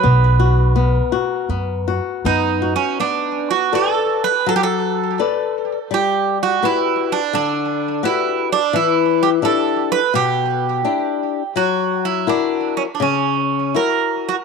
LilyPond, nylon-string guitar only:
\new Staff \with { instrumentName = "Nylon-string guitar" } { \time 4/4 \key b \major \tempo 4 = 84 b8 fis'8 b8 fis'8 b8 fis'8 b8 fis'8 | \key b \minor b4 <a' b' d''>4 fis4 <a' b' d''>4 | g4 <fis' g' b'>4 d4 <fis' g' b'>4 | e4 <d' e' g'>4 b,4 <d' e' g'>4 |
fis4 <e' fis' ais'>4 cis4 <e' fis' ais'>4 | }